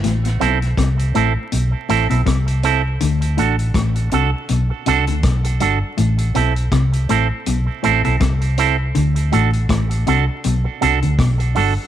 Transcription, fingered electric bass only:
X:1
M:4/4
L:1/16
Q:"Swing 16ths" 1/4=81
K:Ador
V:1 name="Fingered electric bass" clef=bass
A,,,2 B,,,2 C,,2 A,,, z B,,, z A,,, B,,, C,,4 | D,,2 A,,,2 A,,,2 C,, z B,,, z C,, D,, B,,,2 G,,, z | A,,,2 B,,,2 C,,2 A,,, z B,,, z A,,, B,,, C,,4 | D,,2 A,,,2 A,,,2 C,, z B,,, z C,, D,, B,,,2 G,,, z |]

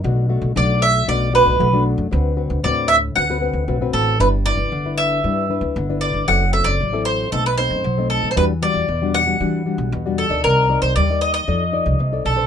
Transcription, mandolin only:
X:1
M:4/4
L:1/16
Q:1/4=115
K:G
V:1 name="Mandolin"
z4 d2 e2 d2 B4 z2 | z4 d2 e2 f6 A2 | B2 d4 e8 d2 | f2 e d3 c2 A B c4 A3/2 c/2 |
B2 d4 f8 A2 | _B3 c d2 _e e6- e A2 |]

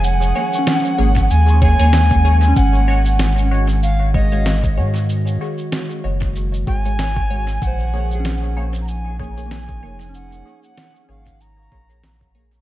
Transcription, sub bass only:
X:1
M:4/4
L:1/16
Q:"Swing 16ths" 1/4=95
K:Bbm
V:1 name="Sub bass" clef=bass
F,,,2 z4 A,,,2 E,,3 E,,4- E,, | A,,,12- A,,,2 A,,2- | A,,2 z4 G,,,4 A,,,6 | B,,,12- B,,,2 F,,,2- |
F,,,2 z4 A,,,4 B,,,2 B,,,4 |]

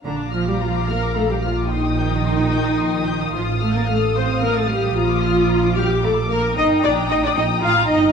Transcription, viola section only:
X:1
M:6/8
L:1/16
Q:3/8=74
K:Bb
V:1 name="Viola section"
D2 F G F2 B2 A G F2 | E12 | F2 A B A2 c2 B A G2 | F6 G2 A2 B2 |
e2 d2 e d e2 f2 e2 |]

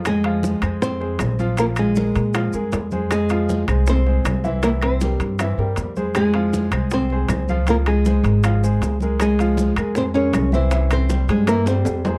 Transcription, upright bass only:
X:1
M:4/4
L:1/8
Q:1/4=158
K:Fm
V:1 name="Upright bass" clef=bass
F,,3 F,,3 B,,,2- | B,,,3 B,,2 G,, F,,2- | F,,3 C,,3 C,,2- | C,,3 G,,2 G,, F,,2- |
F,,3 C,,3 D,,2- | D,,3 A,,,3 D,,2- | D,,3 F,,3 C,,2- | C,,3 G,,3 F,,2 |]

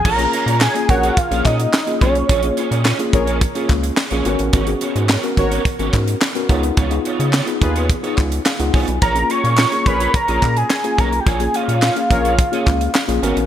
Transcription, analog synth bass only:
X:1
M:4/4
L:1/16
Q:1/4=107
K:A#phr
V:1 name="Analog synth bass" clef=bass
A,,,2 z A,,2 z A,,,2 z A,,, A,,2 z2 B,,,2 | A,,,2 z A,,2 z A,,,3 z C,,2 z A,,, G,,, =A,,, | G,,,2 z G,,2 z G,,,2 z G,,, G,,2 z2 C,,2 | C,,2 z C,2 z D,,3 z C,,2 z C,, ^B,,, =B,,, |
A,,,2 z A,,2 z A,,,2 z A,,, A,,2 z2 B,,,2 | A,,,2 z A,,2 z A,,,3 z C,,2 z A,,, G,,, =A,,, |]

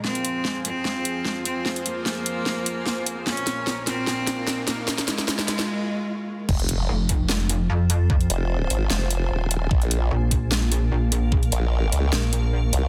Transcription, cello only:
X:1
M:4/4
L:1/8
Q:1/4=149
K:Fm
V:1 name="Cello"
C3 C4 C | z B,6- B, | D3 C4 B, | z A,6- A, |
z8 | z8 | z8 | z8 |]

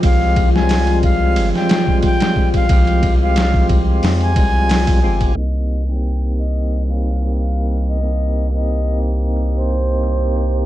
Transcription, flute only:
X:1
M:4/4
L:1/16
Q:"Swing 16ths" 1/4=90
K:Cm
V:1 name="Flute"
f3 a3 f3 g3 g3 f- | f3 f3 z3 a6 z | e3 g3 e3 f3 f3 e- | e3 e3 z3 c6 z |]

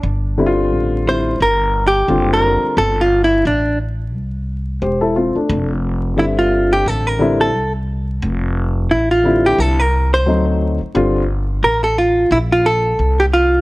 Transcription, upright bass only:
X:1
M:4/4
L:1/16
Q:"Swing 16ths" 1/4=88
K:Gdor
V:1 name="Upright bass" clef=bass
G,,,4 A,,,4 G,,,4 ^F,,,3 z | G,,,4 A,,,4 C,,4 E,,,3 z | F,,,4 G,,,4 A,,,4 C,,4 | F,,,4 A,,,4 C,,4 D,,3 z |
G,,,4 A,,,4 B,,,4 C,,4 |]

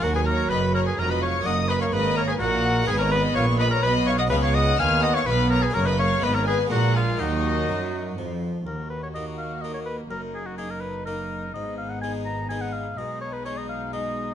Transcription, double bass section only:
X:1
M:3/4
L:1/8
Q:1/4=126
K:Ebm
V:1 name="Double bass section" clef=bass
E,,2 G,,,2 F,,,2 | G,,,2 A,,,2 B,,,2 | A,,,2 B,,,2 C,,2 | D,,2 E,,2 C,,2 |
G,,,2 A,,,2 B,,,2 | E,,2 G,,2 F,,2 | E,,6 | G,,,6 |
A,,,6 | C,,6 |]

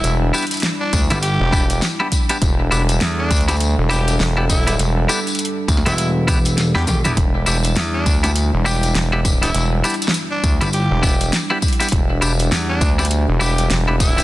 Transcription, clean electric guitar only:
X:1
M:4/4
L:1/16
Q:"Swing 16ths" 1/4=101
K:Em
V:1 name="Clean electric guitar"
z2 [B,DEG] z4 [B,DEG] z2 [B,DEG] z2 [B,DEG] z [B,DEG] | z2 [B,DEG] z4 [B,DEG] z2 [B,DEG] z2 [B,DEG] z [B,DEG] | z2 [B,DEG] z4 [B,DEG] z2 [B,DEG] z2 [B,DEG] z [B,DEG] | z2 [B,DEG] z4 [B,DEG] z2 [B,DEG] z2 [B,DEG] z [B,DEG] |
z2 [B,DEG] z4 [B,DEG] z2 [B,DEG] z2 [B,DEG] z [B,DEG] | z2 [B,DEG] z4 [B,DEG] z2 [B,DEG] z2 [B,DEG] z [B,DEG] |]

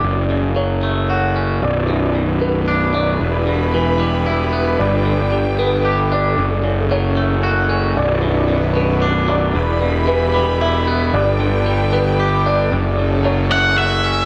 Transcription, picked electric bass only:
X:1
M:3/4
L:1/8
Q:1/4=114
K:Bm
V:1 name="Picked electric bass" clef=bass
F,,,6 | B,,,,6 | E,,,6 | G,,,6 |
F,,,6 | B,,,,6 | E,,,6 | G,,,6 |
F,,,6 |]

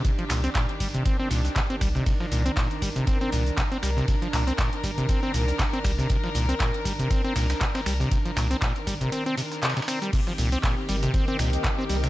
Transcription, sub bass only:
X:1
M:4/4
L:1/8
Q:"Swing 16ths" 1/4=119
K:Cm
V:1 name="Sub bass" clef=bass
z C,, z G,,, z C,, z C,, | z C,, z G,,, z C,, z C,, | z C,, z G,,, z C,, z C,, | z C,, z G,,, z C,, z C,, |
z C,, z G,,, z4 | z C,, z G,,, z C,, z C,, |]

